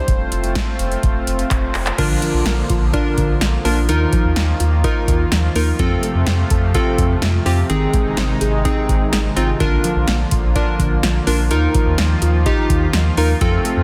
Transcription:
Already playing: analog synth pad C5
0.08 analog synth bass F1, analog synth pad A3 C4 F4, kick, closed hi-hat
0.32 analog synth bass F1, closed hi-hat
0.44 closed hi-hat
0.55 kick, snare, closed hi-hat
0.79 analog synth bass F1, closed hi-hat
0.92 closed hi-hat
1.03 analog synth bass F1, kick, closed hi-hat
1.27 analog synth bass F1, closed hi-hat
1.39 closed hi-hat
1.51 analog synth bass F1, kick, clap, closed hi-hat
1.75 analog synth bass F1, clap, open hi-hat
1.86 clap, closed hi-hat
1.98 analog synth bass A#1, analog synth pad D3 F3 A#3 F4, synth pluck D3, synth keys D4 F4 A#4, kick, closed hi-hat, crash
2.22 synth pluck F3, closed hi-hat
2.34 analog synth bass A#1
2.46 analog synth bass A#1, synth pluck A#3, snare, closed hi-hat
2.70 analog synth bass A#1, synth pluck F4, kick, closed hi-hat
2.93 synth keys D4 F4 A#4, synth pluck D5, kick, closed hi-hat
3.17 analog synth bass A#1, synth pluck D3, kick, closed hi-hat
3.41 analog synth bass A#1, synth pluck F3, snare, closed hi-hat
3.65 analog synth bass A#1, synth pluck A#3, synth keys D4 F4 A#4, open hi-hat
3.89 analog synth bass D#2, analog synth pad D#3 A#3, synth pluck D#3, synth keys D#4 F4 A#4, closed hi-hat
4.13 synth pluck F3, kick, closed hi-hat
4.24 analog synth bass D#2
4.36 analog synth bass D#2, synth pluck A#3, snare, closed hi-hat
4.60 analog synth bass D#2, synth pluck F4, closed hi-hat
4.84 synth keys D#4 F4 A#4, synth pluck D#5, kick, closed hi-hat
5.08 analog synth bass D#2, synth pluck D#3, kick, closed hi-hat
5.32 analog synth bass D#2, synth pluck F3, snare, closed hi-hat
5.55 analog synth bass D#2, synth pluck A#3, synth keys D#4 F4 A#4, open hi-hat
5.79 analog synth bass F2, analog synth pad C3 F3 A3, synth pluck F3, synth keys C4 F4 A4, kick, closed hi-hat
6.03 synth pluck A3, closed hi-hat
6.15 analog synth bass F2
6.27 analog synth bass F2, synth pluck C4, snare, closed hi-hat
6.50 analog synth bass F2, synth pluck A4, kick, closed hi-hat
6.74 synth keys C4 F4 A4, synth pluck F5, kick, closed hi-hat
6.98 analog synth bass F2, synth pluck F3, kick, closed hi-hat
7.22 analog synth bass F2, synth pluck A3, snare, closed hi-hat
7.46 analog synth bass F2, synth keys C4 F4 G4, synth pluck C4, open hi-hat
7.69 analog synth bass G#1, analog synth pad C3 D#3 G#3 D#4, synth pluck D#3, synth keys C4 D#4 G#4, closed hi-hat
7.94 synth pluck G#3, kick, closed hi-hat
8.06 analog synth bass G#1
8.17 analog synth bass G#1, synth pluck C4, snare, closed hi-hat
8.41 analog synth bass G#1, synth pluck G#4, closed hi-hat
8.65 synth keys C4 D#4 G#4, synth pluck D#5, kick, closed hi-hat
8.89 analog synth bass G#1, synth pluck D#3, kick, closed hi-hat
9.13 analog synth bass G#1, synth pluck G#3, snare, closed hi-hat
9.36 analog synth bass G#1, synth keys C4 D#4 F4, synth pluck C4, closed hi-hat
9.60 analog synth bass A#1, analog synth pad D3 F3 A#3 F4, synth pluck D3, synth keys D4 F4 A#4, kick, closed hi-hat
9.84 synth pluck F3, closed hi-hat
9.96 analog synth bass A#1
10.08 analog synth bass A#1, synth pluck A#3, snare, closed hi-hat
10.31 analog synth bass A#1, synth pluck F4, kick, closed hi-hat
10.56 synth keys D4 F4 A#4, synth pluck D5, kick, closed hi-hat
10.79 analog synth bass A#1, synth pluck D3, kick, closed hi-hat
11.03 analog synth bass A#1, synth pluck F3, snare, closed hi-hat
11.27 analog synth bass A#1, synth pluck A#3, synth keys D4 F4 A#4, open hi-hat
11.50 analog synth bass D#2, analog synth pad D#3 F3, synth pluck D#3, synth keys D#4 F4 A#4, closed hi-hat
11.74 synth pluck F3, kick, closed hi-hat
11.86 analog synth bass D#2
11.98 analog synth bass D#2, synth pluck A#3, snare, closed hi-hat
12.22 analog synth bass D#2, synth pluck F4, closed hi-hat
12.46 synth keys D#4 F4 G4, synth pluck D#5, kick, closed hi-hat
12.70 analog synth bass D#2, synth pluck D#3, kick, closed hi-hat
12.93 analog synth bass D#2, synth pluck F3, snare, closed hi-hat
13.17 analog synth bass D#2, synth pluck A#3, synth keys D#4 F4 A#4, open hi-hat
13.41 analog synth bass F2, analog synth pad C3 F3 A3, synth pluck F3, synth keys C4 F4 A4, kick, closed hi-hat
13.65 synth pluck A3, closed hi-hat
13.77 analog synth bass F2

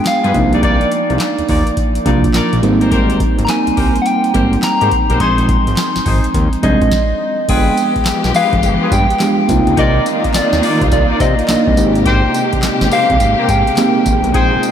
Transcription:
Already playing: fm electric piano G#3 B3 D4 F4 G#4
0.05 soft synth lead F5, snare, clap, closed hi-hat
0.24 analog synth bass G2, horn section F4 G#4 B4, closed hi-hat
0.34 analog synth bass C2, fm electric piano F3 A#3 D4 D#4, kick, closed hi-hat
0.52 horn section D#4 F4 A#4 D5, closed hi-hat
0.63 horn section D#4 F4 A#4 D5, soft synth lead D5, kick, closed hi-hat
0.81 closed hi-hat
0.92 closed hi-hat
1.10 analog synth bass C2, closed hi-hat
1.20 snare, clap, closed hi-hat
1.39 analog synth bass D#2, closed hi-hat
1.48 analog synth bass D#2, horn section D#4 F4 A#4 D5, kick, open hi-hat
1.67 closed hi-hat
1.77 kick, closed hi-hat
1.95 closed hi-hat
2.05 analog synth bass C2, fm electric piano F3 A#3 D4 F4, horn section D#4 F4 A#4 D5, kick, closed hi-hat
2.24 kick, closed hi-hat
2.34 analog synth bass A#1, horn section D#4 F4 A#4 D5, snare, clap, closed hi-hat
2.53 analog synth bass A#1, closed hi-hat
2.62 analog synth bass G#1, fm electric piano G3 A#3 C4 D#4, closed hi-hat
2.81 horn section G4 A#4 C5, closed hi-hat
2.91 horn section G4 A#4 C5, kick, closed hi-hat
3.10 closed hi-hat
3.20 kick, closed hi-hat
3.39 analog synth bass G#1, closed hi-hat
3.45 soft synth lead A#5, snare, clap, closed hi-hat
3.50 soft synth lead G#5
3.67 analog synth bass C2, closed hi-hat
3.77 analog synth bass C2, horn section G4 A#4 C5, kick, open hi-hat
3.96 closed hi-hat
4.02 soft synth lead F#5, closed hi-hat
4.07 soft synth lead G5
4.24 closed hi-hat
4.34 analog synth bass G#1, fm electric piano G3 A#3 C4 D#4, horn section G4 A#4 C5, kick, closed hi-hat
4.53 closed hi-hat
4.63 soft synth lead A#5, snare, clap, closed hi-hat
4.81 analog synth bass G#2, horn section G4 A#4 C5, closed hi-hat
4.91 kick, closed hi-hat
5.10 analog synth bass B1, horn section G4 A#4 C5, closed hi-hat
5.20 analog synth bass A#1, fm electric piano F3 G#3 C4 D#4, horn section D#4 G#4 C5, soft synth lead C6, kick, closed hi-hat
5.38 closed hi-hat
5.49 kick, closed hi-hat
5.67 analog synth bass G#1, closed hi-hat
5.77 snare, clap, closed hi-hat
5.96 analog synth bass G#1, snare, closed hi-hat
6.05 analog synth bass G#1, horn section D#4 G#4 C5, kick, open hi-hat
6.24 closed hi-hat
6.34 analog synth bass D#2, kick, closed hi-hat
6.53 closed hi-hat
6.62 analog synth bass C2, fm electric piano F3 G#3 C4 D4, horn section D#4 G#4 C5, soft synth lead D#5, kick, closed hi-hat
6.81 analog synth bass A#1, kick, closed hi-hat
6.92 kick, snare
7.48 analog synth bass G1, string section F3 G#3 B3 G4, fm electric piano G#3 B3 D4 F4, horn section F4 G#4 B4, soft synth lead G5, kick, closed hi-hat, crash
7.77 closed hi-hat, tambourine
7.96 analog synth bass B1, kick, closed hi-hat
8.05 snare, clap, closed hi-hat, tambourine
8.24 analog synth bass B1, snare
8.34 horn section F4 G#4 B4, soft synth lead F5, open hi-hat, tambourine
8.53 analog synth bass G1, kick, closed hi-hat
8.63 analog synth bass G1, closed hi-hat, tambourine
8.81 horn section F4 G#4 B4
8.91 analog synth bass G2, soft synth lead G5, kick, closed hi-hat, tambourine
9.10 closed hi-hat
9.20 fm electric piano G#3 B3 D4 G4, snare, clap, closed hi-hat, tambourine
9.48 analog synth bass C2, string section D#3 A#3 D#4 F4, fm electric piano A#3 C4 D#4 F4, kick, closed hi-hat, tambourine
9.67 analog synth bass C#2, closed hi-hat
9.77 analog synth bass C2, horn section D#4 F4 A#4 D5, soft synth lead D#5, kick, closed hi-hat
10.06 closed hi-hat, tambourine
10.24 analog synth bass D#2, kick, closed hi-hat
10.34 soft synth lead D5, snare, clap, closed hi-hat, tambourine
10.53 analog synth bass D#2, snare
10.63 horn section D#4 F4 A#4 D5, open hi-hat, tambourine
10.81 analog synth bass C2, kick, closed hi-hat
10.91 analog synth bass C2, soft synth lead D5, kick, closed hi-hat, tambourine
11.10 horn section D#4 F4 A#4 D5
11.16 soft synth lead D5
11.20 analog synth bass C3, soft synth lead D#5, kick, closed hi-hat, tambourine
11.39 closed hi-hat
11.48 analog synth bass C2, fm electric piano A#3 D4 D#4 F4, snare, clap, closed hi-hat, tambourine
11.67 analog synth bass C2, kick
11.77 analog synth bass G#1, string section C3 G#3 A#3 G4, fm electric piano A#3 C4 D#4 G4, closed hi-hat, tambourine
11.95 closed hi-hat
12.06 horn section G4 A#4 C5, soft synth lead G5, kick, closed hi-hat
12.34 closed hi-hat, tambourine
12.53 analog synth bass G#1, kick, closed hi-hat
12.63 snare, clap, closed hi-hat, tambourine
12.81 analog synth bass G#1, snare
12.91 horn section G4 A#4 C5, soft synth lead F5, open hi-hat, tambourine
13.10 analog synth bass C2, kick, closed hi-hat
13.20 analog synth bass G#1, closed hi-hat, tambourine
13.38 horn section G4 A#4 C5
13.49 analog synth bass G#2, soft synth lead G5, kick, closed hi-hat, tambourine
13.67 closed hi-hat
13.77 fm electric piano A#3 C4 D#4 G4, snare, clap, closed hi-hat, tambourine
14.06 analog synth bass G#1, kick, closed hi-hat, tambourine
14.24 analog synth bass B1, closed hi-hat
14.34 analog synth bass A#1, string section C3 D#4, fm electric piano C4 D#4 F4 G#4, horn section D#4 G#4 C5, soft synth lead G5, kick, closed hi-hat
14.63 closed hi-hat, tambourine

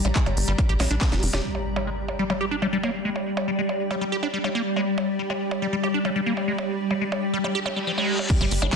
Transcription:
Already playing: ambient pad G3 G4 D5 A#5
0.05 analog synth bass A#1, acid bass G3, closed hi-hat, percussion blips
0.16 acid bass G#3, kick, clap, closed hi-hat
0.26 analog synth bass G1, closed hi-hat, percussion blips
0.37 analog synth bass G1, open hi-hat
0.48 analog synth bass G1, acid bass G3, closed hi-hat
0.58 acid bass G3, kick, closed hi-hat, percussion blips
0.69 analog synth bass A#1, acid bass G4, closed hi-hat
0.80 analog synth bass A#1, acid bass G#3, snare, open hi-hat, percussion blips
0.91 analog synth bass A#1, acid bass D4, closed hi-hat
1.01 acid bass G3, kick, snare, clap, closed hi-hat
1.12 analog synth bass F1, acid bass G4, snare, closed hi-hat, percussion blips
1.23 analog synth bass F1, acid bass A#3, open hi-hat
1.33 analog synth bass F1, acid bass G4, snare, closed hi-hat, percussion blips
1.44 ambient pad G3 G4, impact
1.55 ambient pad D5, percussion blips
1.76 acid bass G3, percussion blips
1.87 acid bass G#3
1.94 ambient pad G5
2.08 percussion blips
2.19 acid bass G3
2.30 acid bass G3, percussion blips
2.41 acid bass G4
2.51 acid bass D4
2.62 acid bass G3, percussion blips
2.73 acid bass G3
2.83 acid bass A#3, percussion blips
3.05 acid bass G#3
3.16 percussion blips
3.37 percussion blips
3.48 acid bass G3
3.59 acid bass G#3
3.69 percussion blips
3.91 acid bass G3, percussion blips
4.01 acid bass G3
4.12 acid bass G4
4.23 acid bass D4, percussion blips
4.33 acid bass G3
4.44 acid bass G3, percussion blips
4.55 acid bass A#3
4.76 acid bass G#3, percussion blips
4.98 percussion blips
5.19 acid bass G3
5.30 acid bass G#3, percussion blips
5.51 percussion blips
5.62 acid bass G3
5.73 acid bass G3
5.83 acid bass G4, percussion blips
5.94 acid bass D4
6.05 acid bass G3, percussion blips
6.16 acid bass G3
6.26 acid bass A#3
6.37 percussion blips
6.48 acid bass G#3
6.58 percussion blips
6.91 acid bass G3, percussion blips
7.01 acid bass G#3
7.12 percussion blips
7.33 acid bass G3
7.44 acid bass G3, reverse cymbal, percussion blips
7.55 acid bass G4
7.66 acid bass G3, percussion blips
7.76 acid bass G3
7.87 acid bass F3
7.98 acid bass G#3, percussion blips
8.19 acid bass G3, percussion blips
8.30 ambient pad G3, kick, closed hi-hat, crash, impact
8.41 analog synth bass G1, acid bass G3, percussion blips
8.51 analog synth bass G1, acid bass G3, open hi-hat
8.62 analog synth bass G1, acid bass D4, closed hi-hat, percussion blips
8.73 acid bass G3, kick, clap, closed hi-hat

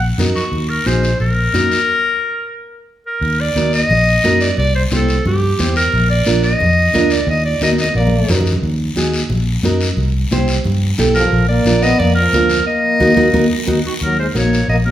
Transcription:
Already playing: fingered electric bass A#1
0.18 fingered electric bass F#2, nylon-string guitar D#4 F#4 A#4, high conga, low conga, short guiro
0.36 clarinet F#4, short guiro
0.52 fingered electric bass D#2, long guiro
0.69 clarinet A#4
0.86 fingered electric bass A#1, nylon-string guitar D#4 F#4 G#4, clarinet C5, high conga, short guiro
1.03 short guiro
1.20 fingered electric bass A#1, clarinet A#4, long guiro
1.53 fingered electric bass F#2, nylon-string guitar D#4 F#4 A#4, high conga, short guiro
1.72 short guiro
3.06 clarinet A#4
3.21 fingered electric bass D#2, long guiro
3.40 clarinet D5
3.56 fingered electric bass D#2, nylon-string guitar D#4 F#4 A#4, high conga, short guiro
3.73 clarinet D#5, short guiro
3.90 fingered electric bass A#1, low conga, long guiro
4.23 fingered electric bass F#2, nylon-string guitar D#4 F#4 A#4, high conga, short guiro
4.41 clarinet D5, short guiro
4.57 fingered electric bass C2, clarinet D5, long guiro
4.76 clarinet C5
4.91 fingered electric bass C2, nylon-string guitar E4 G4 C5, clarinet A4, high conga, short guiro
5.09 short guiro
5.25 fingered electric bass G2, clarinet G4, low conga, long guiro
5.59 fingered electric bass E2, nylon-string guitar E4 G4 C5, high conga, short guiro
5.76 clarinet A#4, short guiro
5.92 fingered electric bass A#1, long guiro
6.10 clarinet D5
6.26 fingered electric bass A#1, nylon-string guitar D4 F4 A#4, high conga, short guiro
6.42 clarinet D#5, short guiro
6.59 fingered electric bass F2, low conga, long guiro
6.94 fingered electric bass D2, nylon-string guitar D4 F4 A#4, high conga, short guiro
7.10 clarinet D5, short guiro
7.27 fingered electric bass D#2, clarinet D#5, long guiro
7.45 clarinet D5
7.61 fingered electric bass D#2, nylon-string guitar D#4 F#4 A#4, clarinet D#5, high conga, short guiro
7.73 high conga
7.78 clarinet D#5, short guiro
7.84 high conga
7.95 fingered electric bass A#1, french horn A#3, clarinet D5, long guiro
8.07 low conga
8.28 fingered electric bass F#2, nylon-string guitar D#4 F#4 A#4, low conga, short guiro
8.41 low conga
8.46 short guiro
8.52 low conga
8.62 fingered electric bass D#2, long guiro
8.96 fingered electric bass D#2, nylon-string guitar D#4 F#4 G#4, high conga, short guiro
9.14 short guiro
9.29 fingered electric bass A#1, low conga, long guiro
9.63 fingered electric bass F#2, nylon-string guitar D#4 F#4 A#4, high conga, short guiro
9.81 short guiro
9.97 fingered electric bass C2, low conga, long guiro
10.31 fingered electric bass C2, nylon-string guitar E4 G4 C5, high conga, short guiro
10.48 short guiro
10.64 fingered electric bass G2, low conga, long guiro
10.98 fingered electric bass B1, nylon-string guitar E4 G4 A4, high conga, short guiro
11.15 french horn F3, clarinet A#4, short guiro
11.32 fingered electric bass A#1, long guiro
11.49 french horn A#3, clarinet D5
11.65 fingered electric bass A#1, nylon-string guitar D4 F4 A#4, high conga, short guiro
11.82 french horn B3, clarinet D#5, short guiro
11.99 fingered electric bass F2, french horn A#3, clarinet D5, low conga, long guiro
12.15 french horn F3, clarinet A#4
12.33 fingered electric bass D2, nylon-string guitar D4 F4 A#4, high conga, short guiro
12.49 short guiro
12.67 french horn A#3, clarinet D#5
13.00 fingered electric bass D#2, nylon-string guitar D#4 F#4 A#4, high conga, long guiro
13.16 fingered electric bass D#2, nylon-string guitar D#4 F#4 A#4, high conga, long guiro
13.33 fingered electric bass D#2, nylon-string guitar D#4 F#4 A#4, high conga, long guiro
13.67 fingered electric bass D#2, nylon-string guitar D#4 F#4 A#4, high conga, long guiro
13.86 french horn D#3, clarinet F#4
14.01 fingered electric bass D#2, french horn F#3, clarinet A#4, long guiro
14.19 french horn G#3, clarinet C5
14.34 fingered electric bass A#1, french horn A#3, nylon-string guitar D#4 F#4 A#4, clarinet C#5, high conga, short guiro
14.53 short guiro
14.68 fingered electric bass A#1, french horn A#3, clarinet D#5, long guiro
14.85 french horn F#3, clarinet A#4, high conga

